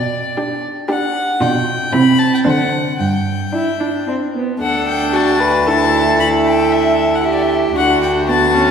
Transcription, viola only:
0, 0, Header, 1, 2, 480
1, 0, Start_track
1, 0, Key_signature, 1, "major"
1, 0, Tempo, 518583
1, 1302, Time_signature, 3, 2, 24, 8
1, 2267, Tempo, 539568
1, 4187, Tempo, 523560
1, 4188, Key_signature, 2, "major"
1, 7947, End_track
2, 0, Start_track
2, 0, Title_t, "Viola"
2, 0, Program_c, 0, 41
2, 345, Note_on_c, 0, 62, 50
2, 700, Note_off_c, 0, 62, 0
2, 824, Note_on_c, 0, 62, 59
2, 1180, Note_off_c, 0, 62, 0
2, 1298, Note_on_c, 0, 62, 68
2, 1657, Note_off_c, 0, 62, 0
2, 1784, Note_on_c, 0, 60, 61
2, 2143, Note_off_c, 0, 60, 0
2, 2259, Note_on_c, 0, 60, 66
2, 2618, Note_off_c, 0, 60, 0
2, 3225, Note_on_c, 0, 64, 62
2, 3470, Note_on_c, 0, 62, 50
2, 3484, Note_off_c, 0, 64, 0
2, 3707, Note_off_c, 0, 62, 0
2, 3713, Note_on_c, 0, 60, 53
2, 3784, Note_off_c, 0, 60, 0
2, 3955, Note_on_c, 0, 59, 46
2, 4186, Note_off_c, 0, 59, 0
2, 4194, Note_on_c, 0, 62, 66
2, 5158, Note_on_c, 0, 64, 59
2, 5172, Note_off_c, 0, 62, 0
2, 5631, Note_off_c, 0, 64, 0
2, 5636, Note_on_c, 0, 64, 65
2, 7048, Note_off_c, 0, 64, 0
2, 7077, Note_on_c, 0, 62, 65
2, 7553, Note_on_c, 0, 59, 62
2, 7567, Note_off_c, 0, 62, 0
2, 7793, Note_on_c, 0, 61, 69
2, 7807, Note_off_c, 0, 59, 0
2, 7947, Note_off_c, 0, 61, 0
2, 7947, End_track
0, 0, End_of_file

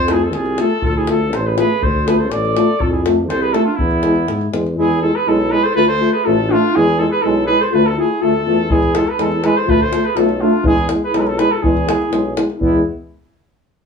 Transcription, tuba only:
0, 0, Header, 1, 2, 480
1, 0, Start_track
1, 0, Tempo, 492611
1, 816, Time_signature, 2, 2, 24, 8
1, 7053, Tempo, 487013
1, 13575, End_track
2, 0, Start_track
2, 0, Title_t, "Tuba"
2, 0, Program_c, 0, 58
2, 0, Note_on_c, 0, 41, 96
2, 342, Note_on_c, 0, 36, 86
2, 356, Note_off_c, 0, 41, 0
2, 605, Note_off_c, 0, 36, 0
2, 826, Note_on_c, 0, 38, 87
2, 1309, Note_on_c, 0, 33, 89
2, 1324, Note_off_c, 0, 38, 0
2, 1570, Note_off_c, 0, 33, 0
2, 1775, Note_on_c, 0, 38, 105
2, 2255, Note_on_c, 0, 33, 89
2, 2269, Note_off_c, 0, 38, 0
2, 2521, Note_off_c, 0, 33, 0
2, 2744, Note_on_c, 0, 41, 94
2, 3218, Note_on_c, 0, 36, 94
2, 3233, Note_off_c, 0, 41, 0
2, 3483, Note_off_c, 0, 36, 0
2, 3703, Note_on_c, 0, 40, 90
2, 4173, Note_off_c, 0, 40, 0
2, 4178, Note_on_c, 0, 44, 78
2, 4395, Note_off_c, 0, 44, 0
2, 4413, Note_on_c, 0, 40, 79
2, 4632, Note_off_c, 0, 40, 0
2, 4671, Note_on_c, 0, 40, 81
2, 4931, Note_off_c, 0, 40, 0
2, 5138, Note_on_c, 0, 35, 82
2, 5402, Note_off_c, 0, 35, 0
2, 5619, Note_on_c, 0, 38, 84
2, 5881, Note_off_c, 0, 38, 0
2, 6106, Note_on_c, 0, 33, 99
2, 6366, Note_off_c, 0, 33, 0
2, 6589, Note_on_c, 0, 40, 94
2, 6847, Note_off_c, 0, 40, 0
2, 7060, Note_on_c, 0, 35, 91
2, 7323, Note_off_c, 0, 35, 0
2, 7542, Note_on_c, 0, 38, 107
2, 7805, Note_off_c, 0, 38, 0
2, 8024, Note_on_c, 0, 38, 82
2, 8237, Note_off_c, 0, 38, 0
2, 8260, Note_on_c, 0, 40, 82
2, 8474, Note_off_c, 0, 40, 0
2, 8502, Note_on_c, 0, 40, 95
2, 8765, Note_off_c, 0, 40, 0
2, 8973, Note_on_c, 0, 40, 77
2, 9239, Note_off_c, 0, 40, 0
2, 9447, Note_on_c, 0, 38, 80
2, 9715, Note_off_c, 0, 38, 0
2, 9929, Note_on_c, 0, 35, 90
2, 10196, Note_off_c, 0, 35, 0
2, 10399, Note_on_c, 0, 40, 94
2, 10668, Note_off_c, 0, 40, 0
2, 10899, Note_on_c, 0, 35, 90
2, 11163, Note_off_c, 0, 35, 0
2, 11371, Note_on_c, 0, 40, 94
2, 11637, Note_off_c, 0, 40, 0
2, 11853, Note_on_c, 0, 35, 79
2, 12118, Note_off_c, 0, 35, 0
2, 12339, Note_on_c, 0, 40, 90
2, 12561, Note_off_c, 0, 40, 0
2, 13575, End_track
0, 0, End_of_file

